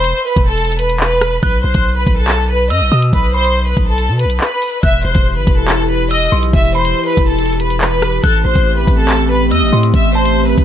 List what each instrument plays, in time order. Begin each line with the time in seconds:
Already playing: 808-style bass E1, violin section C5 C6, synth bell B5
0.04 closed hi-hat
0.26 violin section B4 B5
0.36 808-style bass E1, kick, closed hi-hat
0.47 violin section A4 A5
0.58 closed hi-hat
0.65 closed hi-hat
0.72 closed hi-hat
0.79 violin section B4 B5, closed hi-hat
0.89 closed hi-hat
1.00 violin section B4 B5, clap
1.21 cross-stick, closed hi-hat
1.43 808-style bass B1, violin section B4 B5, synth bell F#6, kick, closed hi-hat
1.64 808-style bass B1, violin section C5 C6
1.74 808-style bass B1, kick, closed hi-hat
1.96 violin section B4 B5
2.07 808-style bass B1, kick, closed hi-hat
2.17 violin section A4 A5
2.28 clap, closed hi-hat
2.49 violin section B4 B5
2.70 808-style bass F#2, violin section D#5 D#6, synth bell E6, closed hi-hat
2.81 808-style bass B1
2.92 808-style bass B2, synth bell D#6
3.02 closed hi-hat
3.13 808-style bass B1, violin section B4 B5, kick, closed hi-hat
3.34 violin section C5 C6, synth bell B5
3.44 closed hi-hat
3.66 violin section B4 B5
3.77 808-style bass B1, kick, closed hi-hat
3.87 violin section A4 A5
3.98 closed hi-hat
4.09 808-style bass B2
4.19 violin section B4 B5, closed hi-hat
4.25 808-style bass B1
4.30 closed hi-hat
4.41 violin section B4 B5, clap
4.62 open hi-hat
4.83 808-style bass E1, ambient pad E3 E4 G4, violin section E5 E6, synth bell F#6, kick, closed hi-hat
5.05 808-style bass E1, violin section C5 C6
5.15 808-style bass E1, kick, closed hi-hat
5.36 808-style bass G1, violin section B4 B5
5.47 808-style bass E1, kick, closed hi-hat
5.58 violin section A4 A5
5.68 clap, closed hi-hat
5.90 violin section B4 B5
6.11 violin section D#5 D#6, synth bell E6, closed hi-hat
6.32 808-style bass B1, synth bell C6
6.43 closed hi-hat
6.53 808-style bass E1, violin section E5 E6, kick, closed hi-hat
6.75 violin section C5 C6, synth bell B5
6.85 closed hi-hat
7.07 violin section B4 B5
7.17 808-style bass E1, kick, closed hi-hat
7.28 violin section A4 A5
7.39 closed hi-hat
7.46 closed hi-hat
7.53 closed hi-hat
7.60 violin section B4 B5, closed hi-hat
7.70 closed hi-hat
7.81 violin section B4 B5, clap
8.02 cross-stick, closed hi-hat
8.24 808-style bass A1, ambient pad A3 C4, violin section A4 A5, synth bell F#6, kick, closed hi-hat
8.45 808-style bass A1, violin section C5 C6
8.55 808-style bass A1, kick, closed hi-hat
8.77 violin section B4 B5
8.87 808-style bass A1, kick, closed hi-hat
8.98 violin section A4 A5
9.09 clap, closed hi-hat
9.30 violin section B4 B5
9.51 808-style bass E2, violin section D#5 D#6, synth bell E6, closed hi-hat
9.62 808-style bass A1
9.72 808-style bass A2, synth bell C6
9.83 closed hi-hat
9.94 808-style bass A1, violin section E5 E6, kick, closed hi-hat
10.15 violin section C5 C6, synth bell A5
10.25 closed hi-hat
10.47 violin section B4 B5
10.58 808-style bass A1, kick, closed hi-hat